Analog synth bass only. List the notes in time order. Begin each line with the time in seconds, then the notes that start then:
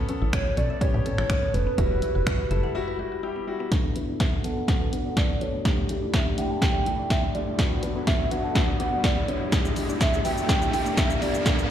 0.22 A1
0.57 B1
0.81 A2
0.94 A2
1.18 A1
1.54 F1
1.78 E1
2.15 F#1
2.27 G1
2.51 F#1